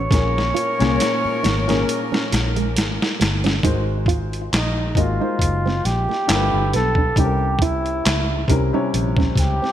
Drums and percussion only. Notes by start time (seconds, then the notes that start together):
0.11 kick, snare, closed hi-hat
0.38 snare
0.57 closed hi-hat
0.80 snare, closed hi-hat
1.00 snare, closed hi-hat
1.44 snare, closed hi-hat
1.69 snare, closed hi-hat
1.89 closed hi-hat
2.14 snare
2.32 snare, closed hi-hat
2.56 closed hi-hat
2.77 snare, closed hi-hat
3.02 snare
3.21 snare, closed hi-hat
3.44 snare, closed hi-hat
3.63 kick, closed hi-hat
4.06 kick, closed hi-hat
4.33 closed hi-hat
4.53 snare, clap, closed hi-hat
4.95 kick, closed hi-hat
5.39 kick, closed hi-hat
5.67 snare
5.85 snare, closed hi-hat
6.11 snare
6.29 snare, clap, closed hi-hat
6.73 snare, closed hi-hat
6.95 kick
7.16 kick, closed hi-hat
7.59 kick, closed hi-hat
7.86 closed hi-hat
8.06 snare, clap, closed hi-hat
8.48 kick, closed hi-hat
8.94 closed hi-hat
9.17 kick, snare
9.36 kick, snare, closed hi-hat
9.64 snare